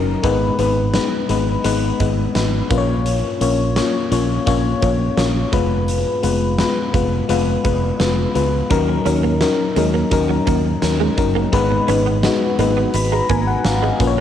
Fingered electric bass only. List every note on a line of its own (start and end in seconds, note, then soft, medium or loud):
0.00 0.14 F#1 medium
0.24 0.49 G#1 medium
0.59 0.97 G#1 medium
1.29 1.55 G#1 medium
1.65 1.90 G#1 medium
2.00 2.26 G#1 medium
2.35 2.61 G#1 loud
2.71 3.21 A#1 medium
3.41 3.79 A#1 medium
4.12 4.37 A#1 medium
4.47 4.72 A#1 medium
4.83 5.08 A#1 loud
5.17 5.43 A#1 medium
5.53 6.04 F1 medium
6.24 6.62 F1 medium
6.94 7.19 F1 medium
7.29 7.55 F1 medium
7.65 7.90 F1 medium
8.00 8.25 F1 medium
8.35 8.61 C#2 medium
8.71 8.96 D#2 medium
9.06 9.44 D#2 medium
9.76 10.02 D#2 medium
10.12 10.37 D#2 medium
10.47 10.73 D#2 medium
10.82 11.08 D#2 loud
11.18 11.43 F#1 medium
11.53 11.78 G#1 medium
11.88 12.26 G#1 medium
12.59 12.84 G#1 medium
12.94 13.20 G#1 loud
13.30 13.55 G#1 loud
13.65 13.90 G#1 loud
14.00 14.20 A#1 medium